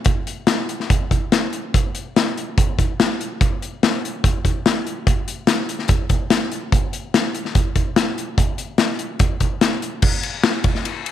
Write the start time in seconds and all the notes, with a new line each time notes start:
0.05 kick, closed hi-hat
0.27 closed hi-hat
0.47 snare, closed hi-hat
0.69 closed hi-hat
0.80 snare
0.90 kick, closed hi-hat
1.11 kick, closed hi-hat
1.32 snare, closed hi-hat
1.53 closed hi-hat
1.74 kick, closed hi-hat
1.95 closed hi-hat
2.16 snare, closed hi-hat
2.37 closed hi-hat
2.58 kick, closed hi-hat
2.79 kick, closed hi-hat
3.00 snare, closed hi-hat
3.21 closed hi-hat
3.41 kick, closed hi-hat
3.62 closed hi-hat
3.83 snare, closed hi-hat
4.05 closed hi-hat
4.24 kick, closed hi-hat
4.45 kick, closed hi-hat
4.66 snare, closed hi-hat
4.87 closed hi-hat
5.07 kick, closed hi-hat
5.28 closed hi-hat
5.47 snare, closed hi-hat
5.69 closed hi-hat
5.79 snare
5.88 kick, closed hi-hat
6.09 kick, closed hi-hat
6.30 snare, closed hi-hat
6.52 closed hi-hat
6.72 kick, closed hi-hat
6.93 closed hi-hat
7.14 snare, closed hi-hat
7.35 closed hi-hat
7.45 snare
7.55 kick, closed hi-hat
7.76 kick, closed hi-hat
7.96 snare, closed hi-hat
8.18 closed hi-hat
8.38 kick, closed hi-hat
8.58 closed hi-hat
8.78 snare, closed hi-hat
8.99 closed hi-hat
9.19 kick, closed hi-hat
9.40 kick, closed hi-hat
9.61 snare, closed hi-hat
9.82 closed hi-hat
10.02 kick, crash
10.23 ride
10.43 snare, ride
10.64 kick, ride
10.75 snare
10.85 ride
11.06 ride